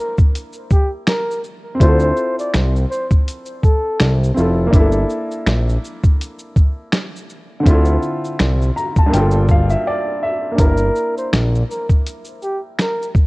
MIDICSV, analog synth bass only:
0, 0, Header, 1, 2, 480
1, 0, Start_track
1, 0, Tempo, 731707
1, 1185, Time_signature, 4, 2, 24, 8
1, 8704, End_track
2, 0, Start_track
2, 0, Title_t, "Analog synth bass"
2, 0, Program_c, 0, 38
2, 1188, Note_on_c, 0, 38, 114
2, 1392, Note_off_c, 0, 38, 0
2, 1672, Note_on_c, 0, 36, 84
2, 1874, Note_off_c, 0, 36, 0
2, 2630, Note_on_c, 0, 36, 86
2, 2833, Note_off_c, 0, 36, 0
2, 2869, Note_on_c, 0, 29, 86
2, 3072, Note_off_c, 0, 29, 0
2, 3105, Note_on_c, 0, 31, 104
2, 3310, Note_off_c, 0, 31, 0
2, 3584, Note_on_c, 0, 34, 81
2, 3789, Note_off_c, 0, 34, 0
2, 5029, Note_on_c, 0, 38, 115
2, 5232, Note_off_c, 0, 38, 0
2, 5511, Note_on_c, 0, 36, 80
2, 5713, Note_off_c, 0, 36, 0
2, 5993, Note_on_c, 0, 31, 111
2, 6399, Note_off_c, 0, 31, 0
2, 6945, Note_on_c, 0, 31, 104
2, 7150, Note_off_c, 0, 31, 0
2, 7431, Note_on_c, 0, 34, 84
2, 7633, Note_off_c, 0, 34, 0
2, 8704, End_track
0, 0, End_of_file